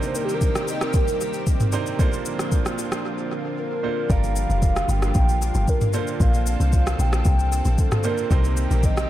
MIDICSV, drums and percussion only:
0, 0, Header, 1, 2, 480
1, 0, Start_track
1, 0, Tempo, 526316
1, 1817, Time_signature, 4, 2, 24, 8
1, 8297, End_track
2, 0, Start_track
2, 0, Title_t, "Drums"
2, 24, Note_on_c, 9, 82, 54
2, 116, Note_off_c, 9, 82, 0
2, 136, Note_on_c, 9, 82, 106
2, 227, Note_off_c, 9, 82, 0
2, 264, Note_on_c, 9, 82, 56
2, 356, Note_off_c, 9, 82, 0
2, 375, Note_on_c, 9, 82, 72
2, 377, Note_on_c, 9, 36, 89
2, 467, Note_off_c, 9, 82, 0
2, 468, Note_off_c, 9, 36, 0
2, 505, Note_on_c, 9, 37, 99
2, 506, Note_on_c, 9, 82, 54
2, 597, Note_off_c, 9, 37, 0
2, 597, Note_off_c, 9, 82, 0
2, 619, Note_on_c, 9, 82, 96
2, 710, Note_off_c, 9, 82, 0
2, 741, Note_on_c, 9, 37, 104
2, 741, Note_on_c, 9, 82, 56
2, 832, Note_off_c, 9, 37, 0
2, 833, Note_off_c, 9, 82, 0
2, 850, Note_on_c, 9, 82, 77
2, 857, Note_on_c, 9, 36, 122
2, 941, Note_off_c, 9, 82, 0
2, 948, Note_off_c, 9, 36, 0
2, 983, Note_on_c, 9, 82, 58
2, 1075, Note_off_c, 9, 82, 0
2, 1102, Note_on_c, 9, 82, 101
2, 1193, Note_off_c, 9, 82, 0
2, 1218, Note_on_c, 9, 82, 57
2, 1309, Note_off_c, 9, 82, 0
2, 1337, Note_on_c, 9, 82, 76
2, 1339, Note_on_c, 9, 36, 88
2, 1428, Note_off_c, 9, 82, 0
2, 1430, Note_off_c, 9, 36, 0
2, 1460, Note_on_c, 9, 82, 51
2, 1463, Note_on_c, 9, 45, 94
2, 1552, Note_off_c, 9, 82, 0
2, 1554, Note_off_c, 9, 45, 0
2, 1570, Note_on_c, 9, 82, 80
2, 1661, Note_off_c, 9, 82, 0
2, 1699, Note_on_c, 9, 82, 59
2, 1790, Note_off_c, 9, 82, 0
2, 1817, Note_on_c, 9, 36, 111
2, 1819, Note_on_c, 9, 82, 60
2, 1909, Note_off_c, 9, 36, 0
2, 1910, Note_off_c, 9, 82, 0
2, 1944, Note_on_c, 9, 82, 53
2, 2035, Note_off_c, 9, 82, 0
2, 2056, Note_on_c, 9, 82, 105
2, 2147, Note_off_c, 9, 82, 0
2, 2181, Note_on_c, 9, 37, 90
2, 2185, Note_on_c, 9, 82, 57
2, 2273, Note_off_c, 9, 37, 0
2, 2276, Note_off_c, 9, 82, 0
2, 2295, Note_on_c, 9, 82, 71
2, 2297, Note_on_c, 9, 36, 93
2, 2386, Note_off_c, 9, 82, 0
2, 2388, Note_off_c, 9, 36, 0
2, 2425, Note_on_c, 9, 37, 94
2, 2425, Note_on_c, 9, 82, 54
2, 2516, Note_off_c, 9, 37, 0
2, 2516, Note_off_c, 9, 82, 0
2, 2539, Note_on_c, 9, 82, 96
2, 2630, Note_off_c, 9, 82, 0
2, 2662, Note_on_c, 9, 37, 98
2, 2663, Note_on_c, 9, 82, 55
2, 2753, Note_off_c, 9, 37, 0
2, 2754, Note_off_c, 9, 82, 0
2, 3737, Note_on_c, 9, 36, 112
2, 3738, Note_on_c, 9, 82, 62
2, 3828, Note_off_c, 9, 36, 0
2, 3829, Note_off_c, 9, 82, 0
2, 3864, Note_on_c, 9, 82, 51
2, 3955, Note_off_c, 9, 82, 0
2, 3975, Note_on_c, 9, 82, 107
2, 4066, Note_off_c, 9, 82, 0
2, 4104, Note_on_c, 9, 82, 54
2, 4196, Note_off_c, 9, 82, 0
2, 4214, Note_on_c, 9, 82, 70
2, 4216, Note_on_c, 9, 36, 94
2, 4306, Note_off_c, 9, 82, 0
2, 4308, Note_off_c, 9, 36, 0
2, 4345, Note_on_c, 9, 37, 98
2, 4345, Note_on_c, 9, 82, 53
2, 4436, Note_off_c, 9, 37, 0
2, 4436, Note_off_c, 9, 82, 0
2, 4459, Note_on_c, 9, 82, 95
2, 4550, Note_off_c, 9, 82, 0
2, 4581, Note_on_c, 9, 37, 103
2, 4582, Note_on_c, 9, 82, 55
2, 4673, Note_off_c, 9, 37, 0
2, 4673, Note_off_c, 9, 82, 0
2, 4691, Note_on_c, 9, 82, 74
2, 4698, Note_on_c, 9, 36, 114
2, 4782, Note_off_c, 9, 82, 0
2, 4789, Note_off_c, 9, 36, 0
2, 4824, Note_on_c, 9, 82, 59
2, 4915, Note_off_c, 9, 82, 0
2, 4942, Note_on_c, 9, 82, 101
2, 5033, Note_off_c, 9, 82, 0
2, 5058, Note_on_c, 9, 82, 58
2, 5149, Note_off_c, 9, 82, 0
2, 5177, Note_on_c, 9, 82, 71
2, 5178, Note_on_c, 9, 36, 91
2, 5268, Note_off_c, 9, 82, 0
2, 5270, Note_off_c, 9, 36, 0
2, 5300, Note_on_c, 9, 82, 54
2, 5303, Note_on_c, 9, 45, 96
2, 5391, Note_off_c, 9, 82, 0
2, 5394, Note_off_c, 9, 45, 0
2, 5409, Note_on_c, 9, 82, 82
2, 5501, Note_off_c, 9, 82, 0
2, 5538, Note_on_c, 9, 82, 57
2, 5629, Note_off_c, 9, 82, 0
2, 5657, Note_on_c, 9, 36, 109
2, 5658, Note_on_c, 9, 82, 62
2, 5748, Note_off_c, 9, 36, 0
2, 5749, Note_off_c, 9, 82, 0
2, 5784, Note_on_c, 9, 82, 53
2, 5875, Note_off_c, 9, 82, 0
2, 5895, Note_on_c, 9, 82, 105
2, 5986, Note_off_c, 9, 82, 0
2, 6024, Note_on_c, 9, 82, 59
2, 6115, Note_off_c, 9, 82, 0
2, 6134, Note_on_c, 9, 82, 70
2, 6136, Note_on_c, 9, 36, 91
2, 6225, Note_off_c, 9, 82, 0
2, 6227, Note_off_c, 9, 36, 0
2, 6264, Note_on_c, 9, 37, 98
2, 6265, Note_on_c, 9, 82, 55
2, 6356, Note_off_c, 9, 37, 0
2, 6356, Note_off_c, 9, 82, 0
2, 6378, Note_on_c, 9, 82, 96
2, 6470, Note_off_c, 9, 82, 0
2, 6500, Note_on_c, 9, 37, 109
2, 6501, Note_on_c, 9, 82, 57
2, 6592, Note_off_c, 9, 37, 0
2, 6592, Note_off_c, 9, 82, 0
2, 6609, Note_on_c, 9, 82, 72
2, 6617, Note_on_c, 9, 36, 116
2, 6700, Note_off_c, 9, 82, 0
2, 6708, Note_off_c, 9, 36, 0
2, 6742, Note_on_c, 9, 82, 54
2, 6834, Note_off_c, 9, 82, 0
2, 6860, Note_on_c, 9, 82, 101
2, 6952, Note_off_c, 9, 82, 0
2, 6977, Note_on_c, 9, 82, 60
2, 7068, Note_off_c, 9, 82, 0
2, 7096, Note_on_c, 9, 82, 72
2, 7098, Note_on_c, 9, 36, 94
2, 7187, Note_off_c, 9, 82, 0
2, 7189, Note_off_c, 9, 36, 0
2, 7219, Note_on_c, 9, 82, 54
2, 7221, Note_on_c, 9, 45, 97
2, 7222, Note_on_c, 9, 37, 100
2, 7310, Note_off_c, 9, 82, 0
2, 7313, Note_off_c, 9, 37, 0
2, 7313, Note_off_c, 9, 45, 0
2, 7328, Note_on_c, 9, 82, 81
2, 7419, Note_off_c, 9, 82, 0
2, 7456, Note_on_c, 9, 82, 56
2, 7548, Note_off_c, 9, 82, 0
2, 7576, Note_on_c, 9, 36, 110
2, 7577, Note_on_c, 9, 82, 62
2, 7668, Note_off_c, 9, 36, 0
2, 7668, Note_off_c, 9, 82, 0
2, 7702, Note_on_c, 9, 82, 51
2, 7793, Note_off_c, 9, 82, 0
2, 7814, Note_on_c, 9, 82, 105
2, 7905, Note_off_c, 9, 82, 0
2, 7944, Note_on_c, 9, 82, 58
2, 8035, Note_off_c, 9, 82, 0
2, 8054, Note_on_c, 9, 82, 72
2, 8056, Note_on_c, 9, 36, 95
2, 8145, Note_off_c, 9, 82, 0
2, 8147, Note_off_c, 9, 36, 0
2, 8184, Note_on_c, 9, 37, 96
2, 8184, Note_on_c, 9, 82, 54
2, 8275, Note_off_c, 9, 37, 0
2, 8276, Note_off_c, 9, 82, 0
2, 8297, End_track
0, 0, End_of_file